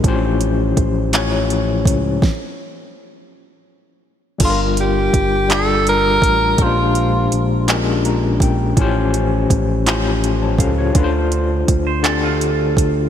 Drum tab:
CC |------|------|x-----|------|
HH |xxxxxx|------|xxxxxx|xxxxxx|
CP |---x--|------|---x--|---x--|
SD |------|o-----|------|------|
BD |o-o--o|o-----|o-o--o|o----o|

CC |------|------|
HH |xxxxxx|xxxxxx|
CP |---x--|---x--|
SD |------|------|
BD |o-o--o|o-o--o|